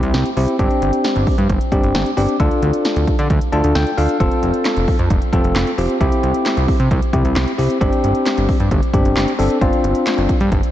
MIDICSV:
0, 0, Header, 1, 4, 480
1, 0, Start_track
1, 0, Tempo, 451128
1, 631, Time_signature, 4, 2, 24, 8
1, 11400, End_track
2, 0, Start_track
2, 0, Title_t, "Tine electric piano"
2, 0, Program_c, 0, 4
2, 0, Note_on_c, 0, 60, 83
2, 0, Note_on_c, 0, 64, 73
2, 0, Note_on_c, 0, 67, 91
2, 310, Note_off_c, 0, 60, 0
2, 310, Note_off_c, 0, 64, 0
2, 310, Note_off_c, 0, 67, 0
2, 392, Note_on_c, 0, 60, 80
2, 392, Note_on_c, 0, 67, 87
2, 393, Note_on_c, 0, 64, 72
2, 590, Note_off_c, 0, 67, 0
2, 591, Note_off_c, 0, 60, 0
2, 591, Note_off_c, 0, 64, 0
2, 631, Note_on_c, 0, 60, 87
2, 631, Note_on_c, 0, 62, 81
2, 631, Note_on_c, 0, 67, 93
2, 1427, Note_off_c, 0, 60, 0
2, 1427, Note_off_c, 0, 62, 0
2, 1427, Note_off_c, 0, 67, 0
2, 1830, Note_on_c, 0, 60, 84
2, 1830, Note_on_c, 0, 62, 75
2, 1830, Note_on_c, 0, 67, 91
2, 2228, Note_off_c, 0, 62, 0
2, 2228, Note_off_c, 0, 67, 0
2, 2229, Note_off_c, 0, 60, 0
2, 2309, Note_on_c, 0, 60, 78
2, 2309, Note_on_c, 0, 62, 72
2, 2310, Note_on_c, 0, 67, 86
2, 2509, Note_off_c, 0, 60, 0
2, 2509, Note_off_c, 0, 62, 0
2, 2509, Note_off_c, 0, 67, 0
2, 2552, Note_on_c, 0, 62, 87
2, 2552, Note_on_c, 0, 65, 80
2, 2553, Note_on_c, 0, 69, 95
2, 3348, Note_off_c, 0, 62, 0
2, 3348, Note_off_c, 0, 65, 0
2, 3348, Note_off_c, 0, 69, 0
2, 3750, Note_on_c, 0, 62, 82
2, 3750, Note_on_c, 0, 65, 76
2, 3751, Note_on_c, 0, 69, 91
2, 3751, Note_on_c, 0, 81, 67
2, 3974, Note_off_c, 0, 81, 0
2, 3992, Note_on_c, 0, 79, 76
2, 4149, Note_off_c, 0, 62, 0
2, 4149, Note_off_c, 0, 65, 0
2, 4149, Note_off_c, 0, 69, 0
2, 4215, Note_off_c, 0, 79, 0
2, 4230, Note_on_c, 0, 77, 71
2, 4231, Note_on_c, 0, 62, 75
2, 4231, Note_on_c, 0, 65, 70
2, 4231, Note_on_c, 0, 69, 86
2, 4430, Note_off_c, 0, 62, 0
2, 4430, Note_off_c, 0, 65, 0
2, 4430, Note_off_c, 0, 69, 0
2, 4453, Note_off_c, 0, 77, 0
2, 4470, Note_on_c, 0, 60, 82
2, 4470, Note_on_c, 0, 65, 76
2, 4470, Note_on_c, 0, 69, 95
2, 5266, Note_off_c, 0, 60, 0
2, 5266, Note_off_c, 0, 69, 0
2, 5267, Note_off_c, 0, 65, 0
2, 5669, Note_on_c, 0, 60, 82
2, 5670, Note_on_c, 0, 65, 75
2, 5670, Note_on_c, 0, 69, 90
2, 6068, Note_off_c, 0, 60, 0
2, 6068, Note_off_c, 0, 69, 0
2, 6069, Note_off_c, 0, 65, 0
2, 6151, Note_on_c, 0, 60, 79
2, 6151, Note_on_c, 0, 65, 71
2, 6151, Note_on_c, 0, 67, 85
2, 6350, Note_off_c, 0, 60, 0
2, 6350, Note_off_c, 0, 65, 0
2, 6350, Note_off_c, 0, 67, 0
2, 6389, Note_on_c, 0, 60, 86
2, 6390, Note_on_c, 0, 64, 79
2, 6390, Note_on_c, 0, 67, 93
2, 7186, Note_off_c, 0, 60, 0
2, 7187, Note_off_c, 0, 64, 0
2, 7187, Note_off_c, 0, 67, 0
2, 7591, Note_on_c, 0, 64, 78
2, 7591, Note_on_c, 0, 67, 94
2, 7592, Note_on_c, 0, 60, 83
2, 7989, Note_off_c, 0, 60, 0
2, 7989, Note_off_c, 0, 64, 0
2, 7989, Note_off_c, 0, 67, 0
2, 8069, Note_on_c, 0, 60, 79
2, 8069, Note_on_c, 0, 64, 71
2, 8069, Note_on_c, 0, 67, 86
2, 8269, Note_off_c, 0, 60, 0
2, 8269, Note_off_c, 0, 64, 0
2, 8269, Note_off_c, 0, 67, 0
2, 8309, Note_on_c, 0, 60, 85
2, 8309, Note_on_c, 0, 62, 78
2, 8309, Note_on_c, 0, 67, 94
2, 9106, Note_off_c, 0, 60, 0
2, 9106, Note_off_c, 0, 62, 0
2, 9106, Note_off_c, 0, 67, 0
2, 9510, Note_on_c, 0, 60, 82
2, 9511, Note_on_c, 0, 62, 77
2, 9511, Note_on_c, 0, 67, 93
2, 9908, Note_off_c, 0, 60, 0
2, 9909, Note_off_c, 0, 62, 0
2, 9909, Note_off_c, 0, 67, 0
2, 9988, Note_on_c, 0, 62, 74
2, 9989, Note_on_c, 0, 60, 80
2, 9989, Note_on_c, 0, 69, 88
2, 10188, Note_off_c, 0, 62, 0
2, 10189, Note_off_c, 0, 60, 0
2, 10189, Note_off_c, 0, 69, 0
2, 10228, Note_on_c, 0, 60, 85
2, 10229, Note_on_c, 0, 62, 77
2, 10229, Note_on_c, 0, 65, 95
2, 11025, Note_off_c, 0, 60, 0
2, 11026, Note_off_c, 0, 62, 0
2, 11026, Note_off_c, 0, 65, 0
2, 11400, End_track
3, 0, Start_track
3, 0, Title_t, "Analog synth bass"
3, 0, Program_c, 1, 38
3, 30, Note_on_c, 1, 36, 101
3, 134, Note_off_c, 1, 36, 0
3, 148, Note_on_c, 1, 36, 107
3, 253, Note_off_c, 1, 36, 0
3, 390, Note_on_c, 1, 36, 96
3, 494, Note_off_c, 1, 36, 0
3, 630, Note_on_c, 1, 31, 107
3, 734, Note_off_c, 1, 31, 0
3, 871, Note_on_c, 1, 31, 101
3, 974, Note_off_c, 1, 31, 0
3, 1232, Note_on_c, 1, 31, 91
3, 1335, Note_off_c, 1, 31, 0
3, 1470, Note_on_c, 1, 43, 88
3, 1574, Note_off_c, 1, 43, 0
3, 1592, Note_on_c, 1, 31, 104
3, 1695, Note_off_c, 1, 31, 0
3, 1828, Note_on_c, 1, 31, 97
3, 1933, Note_off_c, 1, 31, 0
3, 1951, Note_on_c, 1, 31, 100
3, 2055, Note_off_c, 1, 31, 0
3, 2073, Note_on_c, 1, 31, 99
3, 2175, Note_off_c, 1, 31, 0
3, 2311, Note_on_c, 1, 31, 101
3, 2414, Note_off_c, 1, 31, 0
3, 2551, Note_on_c, 1, 38, 102
3, 2654, Note_off_c, 1, 38, 0
3, 2790, Note_on_c, 1, 38, 102
3, 2894, Note_off_c, 1, 38, 0
3, 3151, Note_on_c, 1, 38, 93
3, 3254, Note_off_c, 1, 38, 0
3, 3391, Note_on_c, 1, 50, 101
3, 3495, Note_off_c, 1, 50, 0
3, 3512, Note_on_c, 1, 38, 108
3, 3615, Note_off_c, 1, 38, 0
3, 3751, Note_on_c, 1, 38, 98
3, 3855, Note_off_c, 1, 38, 0
3, 3873, Note_on_c, 1, 38, 94
3, 3975, Note_off_c, 1, 38, 0
3, 3994, Note_on_c, 1, 38, 103
3, 4096, Note_off_c, 1, 38, 0
3, 4232, Note_on_c, 1, 38, 101
3, 4335, Note_off_c, 1, 38, 0
3, 4472, Note_on_c, 1, 29, 103
3, 4575, Note_off_c, 1, 29, 0
3, 4711, Note_on_c, 1, 29, 97
3, 4814, Note_off_c, 1, 29, 0
3, 5070, Note_on_c, 1, 29, 91
3, 5174, Note_off_c, 1, 29, 0
3, 5310, Note_on_c, 1, 41, 95
3, 5414, Note_off_c, 1, 41, 0
3, 5431, Note_on_c, 1, 29, 108
3, 5535, Note_off_c, 1, 29, 0
3, 5668, Note_on_c, 1, 29, 104
3, 5773, Note_off_c, 1, 29, 0
3, 5788, Note_on_c, 1, 29, 103
3, 5893, Note_off_c, 1, 29, 0
3, 5908, Note_on_c, 1, 29, 103
3, 6013, Note_off_c, 1, 29, 0
3, 6148, Note_on_c, 1, 29, 100
3, 6253, Note_off_c, 1, 29, 0
3, 6391, Note_on_c, 1, 36, 102
3, 6495, Note_off_c, 1, 36, 0
3, 6630, Note_on_c, 1, 36, 100
3, 6734, Note_off_c, 1, 36, 0
3, 6990, Note_on_c, 1, 36, 99
3, 7094, Note_off_c, 1, 36, 0
3, 7231, Note_on_c, 1, 48, 93
3, 7334, Note_off_c, 1, 48, 0
3, 7352, Note_on_c, 1, 36, 109
3, 7455, Note_off_c, 1, 36, 0
3, 7589, Note_on_c, 1, 36, 103
3, 7693, Note_off_c, 1, 36, 0
3, 7712, Note_on_c, 1, 36, 102
3, 7815, Note_off_c, 1, 36, 0
3, 7833, Note_on_c, 1, 36, 107
3, 7936, Note_off_c, 1, 36, 0
3, 8071, Note_on_c, 1, 36, 95
3, 8175, Note_off_c, 1, 36, 0
3, 8312, Note_on_c, 1, 31, 107
3, 8415, Note_off_c, 1, 31, 0
3, 8551, Note_on_c, 1, 31, 93
3, 8654, Note_off_c, 1, 31, 0
3, 8912, Note_on_c, 1, 31, 94
3, 9015, Note_off_c, 1, 31, 0
3, 9151, Note_on_c, 1, 43, 94
3, 9254, Note_off_c, 1, 43, 0
3, 9271, Note_on_c, 1, 31, 113
3, 9374, Note_off_c, 1, 31, 0
3, 9507, Note_on_c, 1, 31, 92
3, 9612, Note_off_c, 1, 31, 0
3, 9629, Note_on_c, 1, 31, 97
3, 9733, Note_off_c, 1, 31, 0
3, 9751, Note_on_c, 1, 31, 94
3, 9855, Note_off_c, 1, 31, 0
3, 9990, Note_on_c, 1, 31, 95
3, 10094, Note_off_c, 1, 31, 0
3, 10230, Note_on_c, 1, 31, 95
3, 10334, Note_off_c, 1, 31, 0
3, 10470, Note_on_c, 1, 31, 91
3, 10574, Note_off_c, 1, 31, 0
3, 10828, Note_on_c, 1, 31, 88
3, 10933, Note_off_c, 1, 31, 0
3, 11071, Note_on_c, 1, 43, 95
3, 11174, Note_off_c, 1, 43, 0
3, 11191, Note_on_c, 1, 31, 112
3, 11295, Note_off_c, 1, 31, 0
3, 11400, End_track
4, 0, Start_track
4, 0, Title_t, "Drums"
4, 29, Note_on_c, 9, 42, 51
4, 136, Note_off_c, 9, 42, 0
4, 149, Note_on_c, 9, 38, 117
4, 149, Note_on_c, 9, 42, 77
4, 255, Note_off_c, 9, 42, 0
4, 256, Note_off_c, 9, 38, 0
4, 271, Note_on_c, 9, 42, 52
4, 377, Note_off_c, 9, 42, 0
4, 390, Note_on_c, 9, 46, 77
4, 497, Note_off_c, 9, 46, 0
4, 510, Note_on_c, 9, 42, 51
4, 616, Note_off_c, 9, 42, 0
4, 631, Note_on_c, 9, 36, 112
4, 631, Note_on_c, 9, 42, 70
4, 737, Note_off_c, 9, 36, 0
4, 737, Note_off_c, 9, 42, 0
4, 751, Note_on_c, 9, 42, 53
4, 857, Note_off_c, 9, 42, 0
4, 872, Note_on_c, 9, 42, 73
4, 979, Note_off_c, 9, 42, 0
4, 988, Note_on_c, 9, 42, 54
4, 1095, Note_off_c, 9, 42, 0
4, 1109, Note_on_c, 9, 42, 82
4, 1113, Note_on_c, 9, 38, 118
4, 1216, Note_off_c, 9, 42, 0
4, 1219, Note_off_c, 9, 38, 0
4, 1231, Note_on_c, 9, 42, 50
4, 1337, Note_off_c, 9, 42, 0
4, 1351, Note_on_c, 9, 36, 89
4, 1351, Note_on_c, 9, 46, 48
4, 1458, Note_off_c, 9, 36, 0
4, 1458, Note_off_c, 9, 46, 0
4, 1470, Note_on_c, 9, 42, 45
4, 1577, Note_off_c, 9, 42, 0
4, 1591, Note_on_c, 9, 36, 87
4, 1591, Note_on_c, 9, 42, 76
4, 1697, Note_off_c, 9, 42, 0
4, 1698, Note_off_c, 9, 36, 0
4, 1712, Note_on_c, 9, 42, 59
4, 1818, Note_off_c, 9, 42, 0
4, 1828, Note_on_c, 9, 36, 95
4, 1831, Note_on_c, 9, 42, 74
4, 1934, Note_off_c, 9, 36, 0
4, 1938, Note_off_c, 9, 42, 0
4, 1952, Note_on_c, 9, 42, 51
4, 2058, Note_off_c, 9, 42, 0
4, 2072, Note_on_c, 9, 38, 120
4, 2072, Note_on_c, 9, 42, 76
4, 2178, Note_off_c, 9, 42, 0
4, 2179, Note_off_c, 9, 38, 0
4, 2192, Note_on_c, 9, 42, 52
4, 2299, Note_off_c, 9, 42, 0
4, 2312, Note_on_c, 9, 46, 77
4, 2418, Note_off_c, 9, 46, 0
4, 2431, Note_on_c, 9, 42, 50
4, 2538, Note_off_c, 9, 42, 0
4, 2551, Note_on_c, 9, 36, 111
4, 2551, Note_on_c, 9, 42, 73
4, 2658, Note_off_c, 9, 36, 0
4, 2658, Note_off_c, 9, 42, 0
4, 2673, Note_on_c, 9, 42, 52
4, 2780, Note_off_c, 9, 42, 0
4, 2792, Note_on_c, 9, 42, 76
4, 2899, Note_off_c, 9, 42, 0
4, 2909, Note_on_c, 9, 42, 57
4, 3015, Note_off_c, 9, 42, 0
4, 3030, Note_on_c, 9, 42, 84
4, 3033, Note_on_c, 9, 38, 112
4, 3137, Note_off_c, 9, 42, 0
4, 3140, Note_off_c, 9, 38, 0
4, 3152, Note_on_c, 9, 42, 49
4, 3258, Note_off_c, 9, 42, 0
4, 3272, Note_on_c, 9, 36, 91
4, 3273, Note_on_c, 9, 42, 69
4, 3378, Note_off_c, 9, 36, 0
4, 3379, Note_off_c, 9, 42, 0
4, 3392, Note_on_c, 9, 42, 45
4, 3498, Note_off_c, 9, 42, 0
4, 3512, Note_on_c, 9, 36, 92
4, 3512, Note_on_c, 9, 42, 77
4, 3618, Note_off_c, 9, 36, 0
4, 3618, Note_off_c, 9, 42, 0
4, 3632, Note_on_c, 9, 42, 58
4, 3738, Note_off_c, 9, 42, 0
4, 3751, Note_on_c, 9, 42, 73
4, 3857, Note_off_c, 9, 42, 0
4, 3872, Note_on_c, 9, 42, 52
4, 3978, Note_off_c, 9, 42, 0
4, 3993, Note_on_c, 9, 42, 78
4, 3994, Note_on_c, 9, 38, 117
4, 4099, Note_off_c, 9, 42, 0
4, 4100, Note_off_c, 9, 38, 0
4, 4114, Note_on_c, 9, 42, 52
4, 4220, Note_off_c, 9, 42, 0
4, 4233, Note_on_c, 9, 46, 77
4, 4339, Note_off_c, 9, 46, 0
4, 4352, Note_on_c, 9, 42, 50
4, 4458, Note_off_c, 9, 42, 0
4, 4471, Note_on_c, 9, 36, 112
4, 4471, Note_on_c, 9, 42, 70
4, 4578, Note_off_c, 9, 36, 0
4, 4578, Note_off_c, 9, 42, 0
4, 4591, Note_on_c, 9, 42, 55
4, 4697, Note_off_c, 9, 42, 0
4, 4711, Note_on_c, 9, 42, 78
4, 4818, Note_off_c, 9, 42, 0
4, 4827, Note_on_c, 9, 42, 54
4, 4933, Note_off_c, 9, 42, 0
4, 4947, Note_on_c, 9, 42, 82
4, 4951, Note_on_c, 9, 38, 114
4, 4951, Note_on_c, 9, 39, 95
4, 5054, Note_off_c, 9, 42, 0
4, 5057, Note_off_c, 9, 38, 0
4, 5057, Note_off_c, 9, 39, 0
4, 5069, Note_on_c, 9, 42, 49
4, 5176, Note_off_c, 9, 42, 0
4, 5191, Note_on_c, 9, 36, 90
4, 5191, Note_on_c, 9, 46, 50
4, 5297, Note_off_c, 9, 36, 0
4, 5298, Note_off_c, 9, 46, 0
4, 5309, Note_on_c, 9, 42, 46
4, 5416, Note_off_c, 9, 42, 0
4, 5430, Note_on_c, 9, 42, 75
4, 5431, Note_on_c, 9, 36, 90
4, 5536, Note_off_c, 9, 42, 0
4, 5537, Note_off_c, 9, 36, 0
4, 5551, Note_on_c, 9, 42, 61
4, 5657, Note_off_c, 9, 42, 0
4, 5668, Note_on_c, 9, 36, 96
4, 5671, Note_on_c, 9, 42, 74
4, 5774, Note_off_c, 9, 36, 0
4, 5778, Note_off_c, 9, 42, 0
4, 5792, Note_on_c, 9, 42, 51
4, 5898, Note_off_c, 9, 42, 0
4, 5912, Note_on_c, 9, 42, 78
4, 5913, Note_on_c, 9, 38, 119
4, 5913, Note_on_c, 9, 39, 102
4, 6019, Note_off_c, 9, 38, 0
4, 6019, Note_off_c, 9, 39, 0
4, 6019, Note_off_c, 9, 42, 0
4, 6034, Note_on_c, 9, 42, 51
4, 6140, Note_off_c, 9, 42, 0
4, 6152, Note_on_c, 9, 46, 76
4, 6258, Note_off_c, 9, 46, 0
4, 6272, Note_on_c, 9, 42, 50
4, 6378, Note_off_c, 9, 42, 0
4, 6392, Note_on_c, 9, 36, 111
4, 6393, Note_on_c, 9, 42, 71
4, 6498, Note_off_c, 9, 36, 0
4, 6499, Note_off_c, 9, 42, 0
4, 6513, Note_on_c, 9, 42, 55
4, 6619, Note_off_c, 9, 42, 0
4, 6633, Note_on_c, 9, 42, 73
4, 6739, Note_off_c, 9, 42, 0
4, 6749, Note_on_c, 9, 42, 54
4, 6855, Note_off_c, 9, 42, 0
4, 6869, Note_on_c, 9, 42, 84
4, 6873, Note_on_c, 9, 38, 115
4, 6873, Note_on_c, 9, 39, 99
4, 6976, Note_off_c, 9, 42, 0
4, 6979, Note_off_c, 9, 38, 0
4, 6979, Note_off_c, 9, 39, 0
4, 6991, Note_on_c, 9, 42, 48
4, 7097, Note_off_c, 9, 42, 0
4, 7112, Note_on_c, 9, 36, 92
4, 7113, Note_on_c, 9, 46, 50
4, 7218, Note_off_c, 9, 36, 0
4, 7220, Note_off_c, 9, 46, 0
4, 7231, Note_on_c, 9, 42, 47
4, 7338, Note_off_c, 9, 42, 0
4, 7352, Note_on_c, 9, 36, 90
4, 7352, Note_on_c, 9, 42, 75
4, 7458, Note_off_c, 9, 36, 0
4, 7458, Note_off_c, 9, 42, 0
4, 7473, Note_on_c, 9, 42, 57
4, 7579, Note_off_c, 9, 42, 0
4, 7588, Note_on_c, 9, 36, 100
4, 7591, Note_on_c, 9, 42, 73
4, 7695, Note_off_c, 9, 36, 0
4, 7698, Note_off_c, 9, 42, 0
4, 7712, Note_on_c, 9, 42, 53
4, 7818, Note_off_c, 9, 42, 0
4, 7833, Note_on_c, 9, 38, 116
4, 7833, Note_on_c, 9, 39, 101
4, 7833, Note_on_c, 9, 42, 79
4, 7939, Note_off_c, 9, 42, 0
4, 7940, Note_off_c, 9, 38, 0
4, 7940, Note_off_c, 9, 39, 0
4, 7954, Note_on_c, 9, 42, 53
4, 8060, Note_off_c, 9, 42, 0
4, 8073, Note_on_c, 9, 46, 77
4, 8180, Note_off_c, 9, 46, 0
4, 8193, Note_on_c, 9, 42, 53
4, 8299, Note_off_c, 9, 42, 0
4, 8312, Note_on_c, 9, 36, 113
4, 8313, Note_on_c, 9, 42, 73
4, 8418, Note_off_c, 9, 36, 0
4, 8419, Note_off_c, 9, 42, 0
4, 8433, Note_on_c, 9, 42, 56
4, 8539, Note_off_c, 9, 42, 0
4, 8553, Note_on_c, 9, 42, 75
4, 8660, Note_off_c, 9, 42, 0
4, 8669, Note_on_c, 9, 42, 55
4, 8776, Note_off_c, 9, 42, 0
4, 8790, Note_on_c, 9, 42, 86
4, 8793, Note_on_c, 9, 38, 115
4, 8793, Note_on_c, 9, 39, 96
4, 8896, Note_off_c, 9, 42, 0
4, 8899, Note_off_c, 9, 38, 0
4, 8899, Note_off_c, 9, 39, 0
4, 8911, Note_on_c, 9, 42, 51
4, 9017, Note_off_c, 9, 42, 0
4, 9031, Note_on_c, 9, 36, 91
4, 9032, Note_on_c, 9, 46, 49
4, 9137, Note_off_c, 9, 36, 0
4, 9138, Note_off_c, 9, 46, 0
4, 9149, Note_on_c, 9, 42, 45
4, 9255, Note_off_c, 9, 42, 0
4, 9270, Note_on_c, 9, 42, 77
4, 9271, Note_on_c, 9, 36, 91
4, 9376, Note_off_c, 9, 42, 0
4, 9377, Note_off_c, 9, 36, 0
4, 9391, Note_on_c, 9, 42, 59
4, 9497, Note_off_c, 9, 42, 0
4, 9507, Note_on_c, 9, 36, 102
4, 9510, Note_on_c, 9, 42, 75
4, 9614, Note_off_c, 9, 36, 0
4, 9617, Note_off_c, 9, 42, 0
4, 9632, Note_on_c, 9, 42, 53
4, 9738, Note_off_c, 9, 42, 0
4, 9752, Note_on_c, 9, 38, 121
4, 9752, Note_on_c, 9, 39, 101
4, 9752, Note_on_c, 9, 42, 78
4, 9858, Note_off_c, 9, 38, 0
4, 9858, Note_off_c, 9, 39, 0
4, 9858, Note_off_c, 9, 42, 0
4, 9873, Note_on_c, 9, 42, 54
4, 9979, Note_off_c, 9, 42, 0
4, 9991, Note_on_c, 9, 46, 78
4, 10098, Note_off_c, 9, 46, 0
4, 10110, Note_on_c, 9, 42, 51
4, 10217, Note_off_c, 9, 42, 0
4, 10230, Note_on_c, 9, 36, 115
4, 10232, Note_on_c, 9, 42, 69
4, 10337, Note_off_c, 9, 36, 0
4, 10338, Note_off_c, 9, 42, 0
4, 10351, Note_on_c, 9, 42, 55
4, 10458, Note_off_c, 9, 42, 0
4, 10471, Note_on_c, 9, 42, 77
4, 10578, Note_off_c, 9, 42, 0
4, 10586, Note_on_c, 9, 42, 58
4, 10692, Note_off_c, 9, 42, 0
4, 10708, Note_on_c, 9, 42, 84
4, 10711, Note_on_c, 9, 38, 113
4, 10711, Note_on_c, 9, 39, 94
4, 10814, Note_off_c, 9, 42, 0
4, 10818, Note_off_c, 9, 38, 0
4, 10818, Note_off_c, 9, 39, 0
4, 10830, Note_on_c, 9, 42, 48
4, 10936, Note_off_c, 9, 42, 0
4, 10951, Note_on_c, 9, 36, 93
4, 10951, Note_on_c, 9, 42, 68
4, 11057, Note_off_c, 9, 36, 0
4, 11058, Note_off_c, 9, 42, 0
4, 11070, Note_on_c, 9, 42, 46
4, 11177, Note_off_c, 9, 42, 0
4, 11191, Note_on_c, 9, 36, 92
4, 11191, Note_on_c, 9, 42, 74
4, 11297, Note_off_c, 9, 36, 0
4, 11297, Note_off_c, 9, 42, 0
4, 11314, Note_on_c, 9, 42, 59
4, 11400, Note_off_c, 9, 42, 0
4, 11400, End_track
0, 0, End_of_file